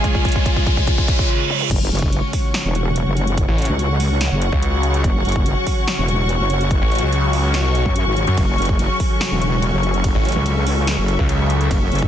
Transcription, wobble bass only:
1.71 F#1
1.92 F#1
2.65 E1
3.07 F#1
3.69 C#2
4.32 F#1
5.04 F#1
5.25 F#1
5.98 E1
6.40 F#1
7.86 F#2
8.07 G#1
8.38 F#1
8.58 F#1
9.32 E1
9.73 F#1
10.36 C#2
10.98 F#1
11.71 F#1
11.92 F#1

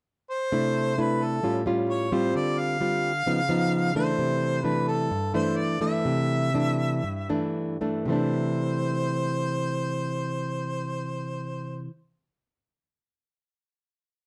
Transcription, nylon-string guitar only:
0.52 C3 A3 D4 E4
0.98 A3 D4 E4
1.43 A2 G3 C#4 F4
1.66 G3 C#4 F4
2.12 G3 C4 F4
2.35 D3
2.80 G3 C4 F4
3.26 C#3 F3 B3 D#4
3.49 F3 B3 D#4
3.95 E3 A3 D4
4.19 C3
4.64 E3 A3 D4
5.11 G2
5.34 E3 A3 D4
5.81 E3 A3 D4
6.05 C3
6.54 E3 A3 D4
7.03 G2
7.29 E3 A3 D4
7.81 E3 A3 D4
8.05 C3 E3
8.10 A3 D4

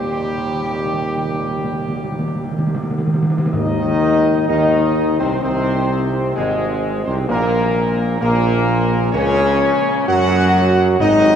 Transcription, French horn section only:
Already playing: G3
3.53 D#4
4.48 D#4
5.19 C4
5.42 C4
6.35 G#3
7.05 C4
7.28 A#3
8.20 A#3
9.15 C#4
10.08 F#4
11.00 D#4

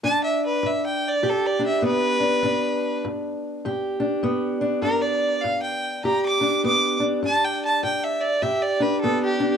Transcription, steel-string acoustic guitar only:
0.03 G2 D4
0.63 G2
1.23 G2 G4
1.59 D4
1.82 G2 B3
2.20 D4
2.43 G2 D4
3.05 G2
3.65 G2 G4
4.00 D4
4.23 G2 B3
4.61 D4
4.82 G2 D4
5.44 G2
6.04 G2 G4
6.41 D4
6.64 G2 B3
7.00 D4
7.23 G2 D4
7.83 G2
8.42 G2 G4
8.80 D4
9.03 G2 B3
9.40 D4

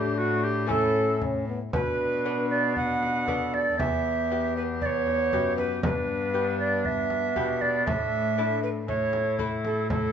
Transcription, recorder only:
Already playing: G4
0.18 F#4
0.44 G4
0.69 A4
1.73 B4
2.51 D5
2.76 F#5
3.54 D5
3.79 E5
4.57 B4
4.82 D5
4.86 C#5
5.58 B4
5.84 B4
6.60 D5
6.86 E5
7.61 D5
7.87 E5
8.63 B4
8.88 C#5
9.66 A4
9.90 A4

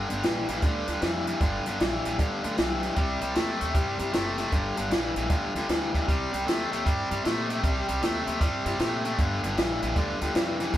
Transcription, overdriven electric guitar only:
0.09 G2 D3
0.24 G2 E3
0.49 G2 E3
0.63 G2 D3
0.88 G2 D3
1.02 G2 E3
1.27 G2 E3
1.42 G2 D3
1.67 G2 D3
1.80 G2 E3
2.04 G2 E3
2.18 G2 D3
2.43 G2 D3
2.57 G2 E3
2.82 G2 E3
2.96 C3 G3
3.21 C3 G3
3.35 C3 A3
3.60 C3 A3
3.74 C3 G3
3.99 C3 G3
4.13 C3 A3
4.37 C3 A3
4.52 G2 D3
4.77 G2 D3
4.90 G2 E3
5.16 G2 E3
5.29 G2 D3
5.55 G2 D3
5.69 G2 E3
5.94 G2 E3
6.08 C3 G3
6.32 C3 G3
6.47 C3 A3
6.72 C3 A3
6.85 C3 G3
7.11 C3 G3
7.24 C3 A3
7.49 C3 A3
7.63 C3 G3
7.88 C3 G3
8.02 C3 A3
8.26 C3 A3
8.40 C3 G3
8.65 C3 G3
8.79 C3 A3
9.04 C3 A3
9.17 G2 D3
9.43 G2 D3
9.57 G2 E3
9.82 G2 E3
9.96 G2 D3
10.21 G2 D3
10.34 G2 E3
10.60 G2 E3
10.74 G2 D3

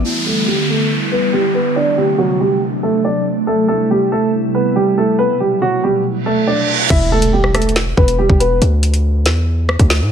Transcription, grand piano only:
0.04 E4 E5
0.26 A3 A4
0.47 G3 G4
0.69 A3 A4
1.12 B3 B4
1.33 G3 G4
1.54 B3 B4
1.76 D4 D5
1.97 G3 G4
2.18 F#3 F#4
2.40 G3 G4
2.83 A3 A4
3.05 D4 D5
3.47 A3 A4
3.68 A3 A4
3.91 G3 G4
4.12 A3 A4
4.55 B3 B4
4.76 G3 G4
4.98 A3 A4
5.19 B3 B4
5.40 G3 G4
5.62 F#3 F#4
5.83 G3 G4
6.26 A3 A4
6.47 D4 D5
6.90 E4 E5
7.12 A3 A4
7.33 G3 G4
7.54 A3 A4
7.97 B3 B4
8.19 G3 G4
8.40 B3 B4

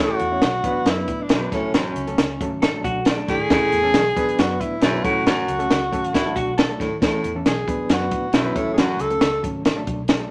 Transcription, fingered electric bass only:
Already playing: A1
0.20 E2
0.43 B1
0.64 A1
0.85 F#2
1.08 A2
1.29 B1
1.52 A1
1.74 A1
1.96 C#2
2.18 C#2
2.41 G#1
2.63 A1
2.85 B1
3.28 G#1
3.50 A1
3.72 E2
3.94 B1
4.16 A1
4.38 F#2
4.61 A2
4.82 B1
5.05 A1
5.27 A1
5.48 C#2
5.71 C#2
5.92 G#1
6.14 A1
6.36 B1
6.80 G#1
7.02 A1
7.24 E2
7.46 B1
7.67 A1
7.89 F#2
8.12 A2
8.33 B1
8.56 A1
8.77 A1
8.99 C#2
9.21 C#2
9.44 G#1
9.65 A1
9.87 B1

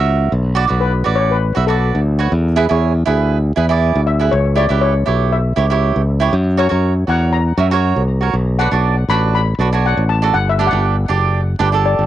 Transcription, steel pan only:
0.81 B4
1.16 C#5
1.31 B4
1.67 A4
4.07 E5
4.31 C#5
4.57 D5
4.81 C#5
5.33 E5
6.58 C#5
7.09 F#5
7.33 A#5
8.59 F#5
9.10 B5
9.35 B5
9.86 F#5
10.09 A5
10.34 F#5
10.49 E5
10.67 F#5
11.86 D5

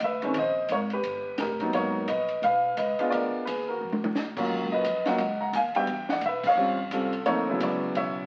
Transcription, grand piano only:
0.04 B4 E5
0.23 D#3 G#3 C4 C#4
0.38 C5 D#5
0.72 A#4 C#5
0.93 G4 B4
1.40 G4 A#4
1.60 F#3 A#3 B3 D#4
1.74 A#4 C#5
2.08 B4 D#5
2.44 B4 F5
2.77 B4 D#5
2.99 G#3 B3 D4 F4
3.10 A#4 D5
3.45 G#4 B4
3.68 F#4 A#4
4.37 F#3 A#3 C#4 F4
4.72 B4 D#5
5.06 F#3 A#3 C#4 F4 D#5 F#5
5.41 F#5 A#5
5.55 F5 G#5
5.75 G3 B3 D4 F#4 G5
5.79 E5
6.10 D5 F#5
6.26 B4 E5
6.47 C#5 F5
6.57 G3 C4 C#4 F4
6.92 G3 C4 C#4 F4 A4
7.26 F3 A#3 C4 D#4 A4 C#5
7.49 C#3 F#3 B3 E4
7.63 B4 D5
7.97 C#5 E5

